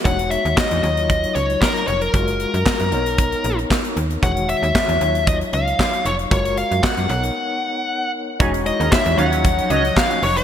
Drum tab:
HH |xxxx-xxxxxxx-xxx|xxxx-xxxxxxx-xxx|xxxx-xxxxxxx-xxx|xxxx-xxx--------|
CP |----x-------x---|----x-------x---|----x-------x---|----x-----------|
SD |----o-------o---|----o-------o---|----o-------o---|----o-----------|
BD |o---o---o---o---|o---o---o---o---|o---o---o---o---|o---o-----------|

HH |xxxx-xxxxxxx-xox|
CP |----x-------x---|
SD |----o-------o---|
BD |o---o---o---o---|